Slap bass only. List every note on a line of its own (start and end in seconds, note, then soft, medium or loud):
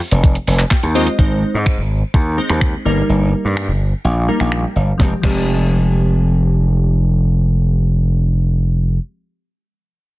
0.12 0.35 F1 medium
0.47 0.63 F1 loud
0.83 1.07 D#2 loud
1.19 1.42 G#1 medium
1.54 1.80 G#2 medium
1.78 2.02 G#1 medium
2.14 2.38 D#2 loud
2.50 2.73 D#2 medium
2.85 3.01 G1 medium
3.09 3.33 G1 medium
3.45 3.70 G2 medium
3.69 3.92 G1 medium
4.04 4.28 A#1 loud
4.40 4.64 A#1 medium
4.76 4.92 G1 medium
5.00 5.13 F1 medium
5.24 8.97 F1 medium